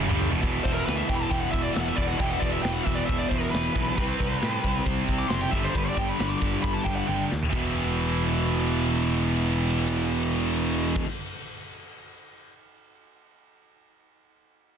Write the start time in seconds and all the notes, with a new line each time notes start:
0.08 G1 G2 D3 G3, floor tom
0.21 floor tom
0.30 E1 E2 B2, floor tom
0.40 E1 E2 B2 E3, kick, open hi-hat
0.64 E1 C5, kick
0.74 A#4
0.86 D2 B4, snare, open hi-hat
0.96 E5
1.09 E1 G5, kick
1.15 B5
1.22 A5
1.30 E1 G5, kick, open hi-hat
1.40 F#5
1.51 E1 E5, kick
1.62 D5
1.72 E1 E5, open hi-hat
1.76 snare
1.81 F#5
1.89 E5
1.96 E1 E2 B2 E3 D5, kick
2.07 F#5
2.18 E1 E2 B2 G5, kick, open hi-hat
2.22 E3
2.31 F#5
2.40 E1 D5, kick
2.52 E5
2.63 E1 G5, snare, open hi-hat
2.74 F#5
2.85 E1 E5, kick
2.95 D5
3.06 E1 E5, kick, open hi-hat
3.18 D5
3.29 E1 C5, kick
3.40 A#4
3.51 E1 B4, snare, open hi-hat
3.73 B1 E2 B2 E3, kick
3.95 C2 C3 G3, kick, open hi-hat
3.99 C4
4.20 C2, kick
4.42 A2, snare, open hi-hat
4.64 C2, kick
4.86 C2, kick, open hi-hat
5.09 C2, kick
5.19 D6
5.29 F#1 C6, snare, open hi-hat
5.41 G5
5.51 G1 G2 D3 G3 E5, kick
5.64 C5
5.75 G1 B4, kick, open hi-hat
5.87 D5
5.97 G1 G5, kick
6.09 B5
6.19 G1 B5, snare, open hi-hat
6.30 D6
6.42 G1, kick
6.63 G1 B5, kick, open hi-hat
6.74 A5
6.85 G1 G5, kick
6.96 F#5
7.07 G1 G2 D3 G3 G5, high tom
7.32 D#2, snare
7.43 floor tom
7.50 E1 E2 B2, kick, crash
7.54 E3
7.75 crash
7.84 ride
7.93 crash
8.00 ride
8.09 crash
8.17 ride
8.26 crash
8.34 ride
8.43 crash
8.51 ride
8.59 crash
8.68 ride
8.77 crash
8.86 ride
8.95 crash
9.03 ride
9.12 crash
9.20 ride
9.28 crash
9.36 ride
9.45 crash
9.53 ride
9.61 crash
9.70 ride
9.79 crash
9.88 ride
9.96 crash
10.05 ride
10.15 crash
10.23 ride
10.31 crash
10.40 ride
10.49 crash
10.57 ride
10.66 crash
10.74 ride
10.96 kick, crash